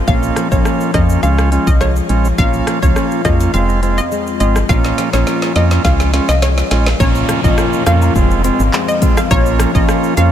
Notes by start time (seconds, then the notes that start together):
Already playing: F3 G#3
0.08 A#1 A#2 A#3 C#4 F4 F5, kick, shaker
0.23 shaker
0.36 F3, cross-stick, closed hi-hat, shaker
0.52 A#1 A#3 C#4 F4 C#5, kick, shaker
0.65 C#4, cross-stick, shaker
0.80 shaker
0.94 F2 A#3 C#4 F4 D#5, kick, cross-stick, closed hi-hat, shaker
1.09 shaker
1.23 C#2 G#3 C#4 F4 F5, shaker
1.38 cross-stick, shaker
1.52 G#3 C#4 F4, closed hi-hat, shaker
1.67 C2 D#5, kick, shaker
1.81 G#3 C#5, cross-stick, shaker
1.96 shaker
2.09 A#1 F3 G#3 C#4 F4, closed hi-hat, shaker
2.25 shaker
2.38 A#1 A#2 A#3 C#4 F4 F5, kick, shaker
2.53 shaker
2.67 F3, cross-stick, closed hi-hat, shaker
2.82 C#2 A#3 C#4 F4 C#5, kick, shaker
2.96 C#4, cross-stick, shaker
3.11 shaker
3.25 F2 G#3 A#3 C#4 F4 D#5, kick, cross-stick, closed hi-hat, shaker
3.40 A#3, shaker
3.54 F1 F2 G#3 C4 F4 F5, shaker
3.69 shaker
3.82 G#3 C4 F4, closed hi-hat, shaker
3.98 D#5, shaker
4.12 G#3, shaker
4.27 shaker
4.40 G#1 F3 G#3 C4 F4 D#5, closed hi-hat, shaker
4.56 cross-stick, shaker
4.69 A#1 A#2 A#3 C#4 F4 F5, kick, snare, shaker
4.84 snare, shaker
4.98 F3, snare, closed hi-hat, shaker
5.13 A#1 A#3 C#4 F4 C#5, snare, shaker
5.27 C#4, snare, shaker
5.42 snare, shaker
5.56 F2 A#3 C#4 F4 D#5, snare, closed hi-hat, shaker
5.71 snare, shaker
5.84 C#2 G#3 C#4 F4 F5, kick, snare, shaker
6.00 snare, shaker
6.13 G#3 C#4 F4, snare, closed hi-hat, shaker
6.29 C2 D#5, snare, shaker
6.42 G#3 C#5, snare, shaker
6.58 snare, shaker
6.71 A#1 F3 G#3 C#4 F4, snare, closed hi-hat, shaker
6.86 snare, shaker
7.00 A#1 A#2 A#3 C#4 F4 C#5, kick, downlifter, high woodblock, shaker
7.15 shaker
7.29 F3, cross-stick, closed hi-hat, cabasa, shaker
7.44 A#1 A#3 C#4 F4 D#5, kick, shaker
7.58 A#3, cross-stick, shaker
7.73 shaker
7.86 F2 F3 A#3 C#4 F4 F5, cross-stick, closed hi-hat, cabasa, shaker
8.02 high woodblock, shaker
8.15 F1 F2 G#3 C4 F4, kick, shaker
8.31 shaker
8.44 G#3 C4 F4, closed hi-hat, cabasa, shaker
8.60 G#1, shaker
8.73 G#3, clap, shaker
8.88 D#5, shaker
9.02 G#3 C4 F4, kick, closed hi-hat, cabasa, shaker
9.17 F5, cross-stick, shaker
9.31 A#1 A#2 A#3 C#4 F4 C#5, kick, high woodblock, shaker
9.46 shaker
9.59 F3, cross-stick, closed hi-hat, cabasa, shaker
9.75 A#1 A#3 C#4 F4 D#5, kick, shaker
9.88 A#3, cross-stick, shaker
10.04 shaker
10.17 F2 F3 A#3 C#4 F4 F5, closed hi-hat, cabasa, shaker